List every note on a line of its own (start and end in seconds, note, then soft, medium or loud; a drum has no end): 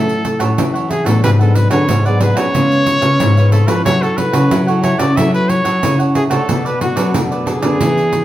0.00 0.54 A2 medium
0.00 0.53 F#3 medium
0.00 0.34 A3 medium
0.00 0.53 C#4 medium
0.00 0.23 E4 medium
0.00 0.53 E4 medium
0.00 0.23 A4 medium
0.00 0.63 A4 loud
0.00 0.24 C#5 medium
0.00 0.24 F#5 medium
0.09 pandeiro soft
0.24 muted cavaquinho stroke soft
0.24 pandeiro medium
0.39 0.54 A2 medium
0.39 0.73 A4 medium
0.39 0.72 C#5 medium
0.39 0.72 F#5 medium
0.39 pandeiro medium
0.58 1.00 E3 medium
0.58 1.20 E3 medium
0.58 1.02 F#3 medium
0.58 1.02 C#4 medium
0.58 1.02 E4 medium
0.58 pandeiro medium
0.74 0.88 A4 medium
0.74 0.89 C#5 medium
0.74 0.89 F#5 medium
0.74 pandeiro soft
0.89 1.05 E4 medium
0.89 1.07 G#4 medium
0.89 1.05 A4 medium
0.89 1.05 C#5 medium
0.89 1.03 F#5 medium
0.89 pandeiro medium
1.04 1.20 A2 medium
1.04 1.39 F#3 medium
1.04 1.39 B3 medium
1.04 1.40 D4 medium
1.04 1.23 A4 medium
1.04 1.22 A4 medium
1.04 1.21 C#5 medium
1.04 1.21 F#5 medium
1.04 pandeiro medium
1.23 1.86 G#2 medium
1.23 1.65 G#2 medium
1.23 1.38 D4 soft
1.23 1.38 G#4 medium
1.23 1.31 B4 loud
1.23 1.39 B4 medium
1.23 1.38 F#5 medium
1.23 pandeiro medium
1.39 1.51 F#3 medium
1.39 1.51 B3 medium
1.39 1.52 D4 medium
1.39 1.54 G#4 medium
1.39 1.57 A4 medium
1.39 1.55 B4 medium
1.39 1.55 F#5 medium
1.39 pandeiro soft
1.55 1.86 F#3 medium
1.55 1.87 B3 medium
1.55 1.87 D4 medium
1.55 1.71 B4 medium
1.55 muted cavaquinho stroke soft
1.55 pandeiro medium
1.70 1.86 D3 medium
1.70 1.88 G#4 medium
1.70 1.87 B4 medium
1.70 2.07 C#5 loud
1.70 1.86 F#5 medium
1.70 pandeiro medium
1.88 2.31 G#2 loud
1.88 2.51 G#2 medium
1.88 2.03 D4 medium
1.88 2.04 G#4 soft
1.88 2.04 B4 medium
1.88 2.04 F#5 medium
1.88 pandeiro medium
2.05 2.50 F#3 medium
2.05 2.50 B3 medium
2.05 2.50 D4 medium
2.05 2.20 G#4 medium
2.05 2.20 B4 medium
2.05 2.23 D5 medium
2.05 2.20 F#5 medium
2.05 pandeiro soft
2.20 2.36 D4 medium
2.20 2.36 G#4 medium
2.20 2.35 B4 medium
2.20 2.38 B4 medium
2.20 2.34 F#5 medium
2.20 pandeiro medium
2.35 2.51 B2 medium
2.35 2.53 G#4 medium
2.35 2.53 B4 medium
2.35 3.51 C#5 loud
2.35 2.52 F#5 medium
2.35 pandeiro medium
2.54 2.96 C#3 loud
2.54 3.17 C#3 medium
2.54 3.15 G#3 medium
2.54 3.15 B3 medium
2.54 2.85 F4 medium
2.54 3.15 F4 medium
2.54 2.85 B4 medium
2.54 2.86 C#5 medium
2.54 2.86 F5 medium
2.54 pandeiro medium
2.72 pandeiro soft
2.86 muted cavaquinho stroke soft
2.86 pandeiro medium
3.01 3.17 C#3 medium
3.01 3.35 B4 medium
3.01 3.35 C#5 medium
3.01 3.34 F5 medium
3.01 pandeiro medium
3.20 3.62 G#2 loud
3.20 3.83 G#2 medium
3.20 3.64 G#3 medium
3.20 3.64 B3 medium
3.20 3.65 F4 medium
3.20 pandeiro medium
3.37 3.51 B4 medium
3.37 3.52 C#5 medium
3.37 3.52 F5 medium
3.37 pandeiro soft
3.51 3.67 F4 soft
3.51 3.69 A4 medium
3.51 3.68 B4 medium
3.51 3.67 C#5 medium
3.51 3.66 F5 medium
3.51 pandeiro medium
3.67 3.82 F3 medium
3.67 3.96 C#4 medium
3.67 3.96 E4 medium
3.67 3.96 A4 medium
3.67 3.85 B4 medium
3.67 3.84 C#5 medium
3.67 3.83 F5 medium
3.67 pandeiro medium
3.85 4.48 F#3 medium
3.85 4.28 F#3 medium
3.85 4.00 E4 medium
3.85 4.01 A4 medium
3.85 4.04 C#5 loud
3.85 4.01 F#5 medium
3.85 pandeiro medium
4.02 4.14 C#4 medium
4.02 4.14 E4 medium
4.02 4.19 A4 medium
4.02 4.14 A4 medium
4.02 4.17 A4 medium
4.02 4.17 C#5 medium
4.02 4.17 F#5 medium
4.02 pandeiro soft
4.17 4.62 C#4 medium
4.17 4.63 E4 medium
4.17 4.63 A4 medium
4.17 4.67 B4 loud
4.17 muted cavaquinho stroke soft
4.17 pandeiro medium
4.32 4.48 C#3 medium
4.32 4.50 A4 medium
4.32 4.50 C#5 medium
4.32 4.49 F#5 medium
4.32 pandeiro medium
4.50 5.14 C#3 medium
4.50 4.93 F#3 loud
4.50 4.66 E4 medium
4.50 4.67 A4 medium
4.50 4.67 C#5 medium
4.50 4.66 F#5 medium
4.50 pandeiro medium
4.67 5.12 C#4 medium
4.67 5.12 E4 medium
4.67 5.13 A4 medium
4.67 4.82 A4 medium
4.67 4.83 C#5 medium
4.67 4.83 F#5 medium
4.67 pandeiro soft
4.82 4.99 E4 medium
4.82 4.99 A4 medium
4.82 5.00 C#5 medium
4.82 4.98 C#5 medium
4.82 4.97 F#5 medium
4.82 pandeiro medium
4.98 5.14 C#3 medium
4.98 5.16 A4 medium
4.98 5.15 C#5 medium
4.98 5.18 D5 loud
4.98 5.15 F#5 medium
4.98 pandeiro medium
5.16 5.80 F#3 medium
5.16 5.59 F#3 medium
5.16 5.78 C#4 medium
5.16 5.48 E4 medium
5.16 5.78 E4 medium
5.16 5.48 A4 medium
5.16 5.78 A4 medium
5.16 5.49 C#5 medium
5.16 5.33 E5 loud
5.16 5.49 F#5 medium
5.16 pandeiro medium
5.34 5.51 B4 loud
5.34 pandeiro soft
5.49 5.99 C#5 loud
5.49 muted cavaquinho stroke soft
5.49 pandeiro medium
5.64 5.80 F#3 medium
5.64 5.98 A4 medium
5.64 5.98 C#5 medium
5.64 5.97 F#5 medium
5.64 pandeiro medium
5.83 6.25 C#3 loud
5.83 6.46 C#3 medium
5.83 6.27 C#4 medium
5.83 6.28 E4 medium
5.83 6.28 A4 medium
5.83 pandeiro medium
5.99 6.14 A4 medium
5.99 6.15 C#5 medium
5.99 6.14 F#5 medium
5.99 pandeiro soft
6.14 6.30 E4 medium
6.14 6.23 G#4 medium
6.14 6.31 A4 medium
6.14 6.30 C#5 medium
6.14 6.29 F#5 medium
6.14 pandeiro medium
6.30 6.46 C3 medium
6.30 6.59 A3 medium
6.30 6.60 D4 medium
6.30 6.60 F#4 medium
6.30 6.68 A4 medium
6.30 6.48 A4 medium
6.30 6.47 C#5 medium
6.30 6.46 F#5 medium
6.30 pandeiro medium
6.48 7.11 B2 medium
6.48 6.91 B2 medium
6.48 6.64 D4 medium
6.48 6.64 A4 medium
6.48 6.64 B4 medium
6.48 6.64 D5 medium
6.48 pandeiro medium
6.65 6.80 A4 medium
6.65 6.80 B4 medium
6.65 6.81 B4 medium
6.65 6.80 D5 medium
6.65 pandeiro soft
6.80 7.09 A3 medium
6.80 7.10 D4 medium
6.80 7.18 F#4 medium
6.80 7.10 F#4 medium
6.80 muted cavaquinho stroke soft
6.80 pandeiro medium
6.96 7.11 F#3 medium
6.96 7.13 A4 medium
6.96 7.13 B4 medium
6.96 7.12 D5 medium
6.96 pandeiro medium
7.14 7.77 F#2 medium
7.14 7.57 B2 loud
7.14 7.59 A3 medium
7.14 7.30 D4 medium
7.14 7.59 D4 medium
7.14 7.59 F#4 medium
7.14 7.30 A4 medium
7.14 7.30 B4 medium
7.14 7.30 D5 medium
7.14 pandeiro medium
7.31 7.46 A4 medium
7.31 7.46 B4 medium
7.31 7.46 D5 medium
7.31 pandeiro soft
7.46 7.62 D4 medium
7.46 8.25 G#4 loud
7.46 7.62 A4 medium
7.46 7.62 B4 medium
7.46 7.61 D5 medium
7.46 pandeiro medium
7.62 7.77 D3 medium
7.62 8.24 B3 medium
7.62 8.24 D4 medium
7.62 8.24 G#4 medium
7.62 7.79 A4 medium
7.62 7.79 B4 medium
7.62 7.78 D5 medium
7.62 pandeiro medium
7.80 8.23 E3 medium
7.80 8.25 E3 medium
7.80 8.11 D4 soft
7.80 8.12 G#4 medium
7.80 8.12 B4 medium
7.80 8.12 E5 medium
7.80 pandeiro medium
7.98 pandeiro soft
8.12 muted cavaquinho stroke soft
8.12 pandeiro medium